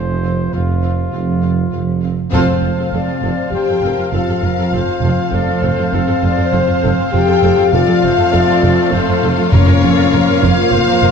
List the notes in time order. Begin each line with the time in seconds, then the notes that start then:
Already playing: F1 F2 C3 F3 C4 F4 C5
0.23 C4 F4 F5
0.52 F1 F2 C4 F4 F5
0.82 C4 F4 F5
1.11 F1 F2 C4 F4 F5
1.42 C4 F4 F5
1.71 F1 F2 C4 F4 F5
2.01 C4 F4 F5
2.31 F1 F2 F3 C4 F4 A4 C5 F5 A5
2.48 F2 A4
2.62 F1 F2 F4
2.77 F2 A4
2.92 F1 F2 A4 D5
3.08 F2 F4
3.23 F1 F2 A4
3.50 F1 F2 G4 C5 G5
3.55 F4
3.68 F2 A4
3.82 F1 F2 A4 A#4
3.98 F2 F4
4.11 F1 F2 F4 A4 F5
4.28 F2 A4
4.42 F1 F2 F4 A#4
4.57 F2 A4
4.72 F1 F2 A4 C5
4.88 F2 F4
5.01 F1 F2 A4
5.32 F1 F2 A3 F4 A4 D5
5.47 F2 A4
5.63 F1 F2 A4 C5
5.77 F2 F4
5.92 F1 F2 C4 A4 C5
6.07 F2 A4
6.22 F1 F2 F4 D5
6.36 F2 A4
6.52 F1 F2 A4 C5
6.66 F2 F4
6.82 F1 F2 A4
7.11 F1 F2 F4 G4 A4 G5
7.27 F2 A4
7.43 F1 F2 A4
7.57 F2 F4
7.71 F1 F2 F3 A3 C4 F4 A4 D5 F5
7.86 F2 A4
8.01 F1 F2 F4 C5
8.16 F2 A4
8.32 F1 F2 A4 D5
8.47 F2 F4
8.62 F1 F2 A4
8.91 F1 F2 A3 F4 A4 C5
9.08 F2 A4
9.23 F1 F2 A4
9.37 F2 F4
9.51 F1 F2 F3 A#3 C#4 A#4 C#5 F5
9.67 F2 A#4
9.82 F1 F2 F4 A4
9.97 F2 A#4
10.12 F1 F2 A#4
10.28 F2 F4
10.42 F1 F2 F4 A#4 C#5 F5
10.72 F1 F2 F4 C5
10.87 F2 A#4
11.02 F1 F2 A#4